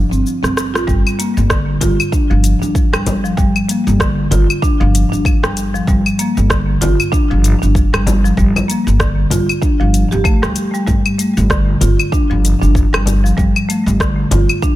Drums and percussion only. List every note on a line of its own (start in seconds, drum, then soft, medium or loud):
0.13 shaker soft
0.26 shaker soft
0.44 cross-stick medium
0.44 shaker soft
0.57 cross-stick medium
0.57 shaker medium
0.75 cross-stick medium
0.75 shaker soft
0.88 kick loud
0.88 shaker soft
1.07 claves medium
1.07 shaker soft
1.20 closed hi-hat medium
1.20 shaker medium
1.37 shaker soft
1.50 kick loud
1.50 cross-stick medium
1.50 shaker soft
1.81 closed hi-hat loud
1.81 frame drum medium
1.81 shaker medium
2.00 claves medium
2.00 shaker soft
2.12 kick loud
2.12 shaker soft
2.44 closed hi-hat loud
2.44 shaker medium
2.63 shaker soft
2.75 kick loud
2.75 shaker soft
2.93 cross-stick medium
2.93 claves medium
2.93 shaker soft
3.06 closed hi-hat medium
3.06 frame drum loud
3.06 shaker medium
3.25 shaker soft
3.37 kick loud
3.37 shaker soft
3.56 claves medium
3.56 shaker soft
3.69 closed hi-hat medium
3.69 shaker medium
3.88 shaker soft
4.00 kick loud
4.00 cross-stick medium
4.00 shaker soft
4.31 closed hi-hat medium
4.31 frame drum medium
4.31 shaker medium
4.50 claves medium
4.50 shaker soft
4.62 kick loud
4.62 shaker soft
4.95 closed hi-hat loud
4.95 shaker medium
5.13 shaker soft
5.25 kick loud
5.25 claves medium
5.25 shaker soft
5.44 cross-stick medium
5.44 shaker soft
5.57 closed hi-hat medium
5.57 shaker medium
5.75 shaker soft
5.87 kick loud
5.87 shaker soft
6.06 claves medium
6.06 shaker soft
6.19 closed hi-hat medium
6.19 shaker medium
6.37 shaker soft
6.50 kick loud
6.50 cross-stick medium
6.50 shaker soft
6.82 closed hi-hat medium
6.82 frame drum medium
6.82 shaker medium
7.00 claves medium
7.00 shaker soft
7.13 kick loud
7.13 shaker medium
7.44 closed hi-hat medium
7.44 shaker medium
7.63 shaker soft
7.75 kick loud
7.75 shaker soft
7.94 cross-stick medium
7.94 claves medium
7.94 shaker soft
8.07 closed hi-hat medium
8.07 frame drum loud
8.07 shaker medium
8.25 shaker soft
8.37 kick loud
8.37 shaker soft
8.56 frame drum medium
8.56 claves medium
8.56 shaker soft
8.70 closed hi-hat medium
8.70 shaker medium
8.88 shaker soft
9.00 kick loud
9.00 cross-stick medium
9.00 shaker soft
9.30 closed hi-hat medium
9.30 frame drum loud
9.30 shaker medium
9.49 claves medium
9.49 shaker soft
9.62 kick loud
9.62 shaker soft
9.94 closed hi-hat medium
9.94 shaker medium
10.12 shaker soft
10.25 kick loud
10.25 claves medium
10.25 shaker soft
10.43 cross-stick medium
10.43 shaker soft
10.56 closed hi-hat medium
10.56 shaker medium
10.74 shaker soft
10.87 kick loud
10.87 shaker soft
11.06 claves medium
11.06 shaker soft
11.19 closed hi-hat medium
11.19 shaker medium
11.37 shaker soft
11.50 kick loud
11.50 cross-stick medium
11.50 shaker soft
11.81 closed hi-hat medium
11.81 frame drum medium
11.81 shaker medium
11.99 claves medium
11.99 shaker soft
12.12 kick loud
12.12 shaker soft
12.45 closed hi-hat medium
12.45 shaker medium
12.63 shaker soft
12.75 kick loud
12.75 shaker soft
12.94 cross-stick medium
12.94 claves medium
12.94 shaker soft
13.06 closed hi-hat medium
13.06 frame drum medium
13.06 shaker medium
13.26 shaker soft
13.38 kick loud
13.38 shaker soft
13.56 claves medium
13.56 shaker soft
13.70 closed hi-hat medium
13.70 shaker medium
13.88 shaker soft
14.00 kick loud
14.00 cross-stick medium
14.00 shaker soft
14.31 closed hi-hat medium
14.31 frame drum loud
14.31 shaker medium
14.49 claves medium
14.49 shaker soft
14.62 kick loud
14.62 shaker soft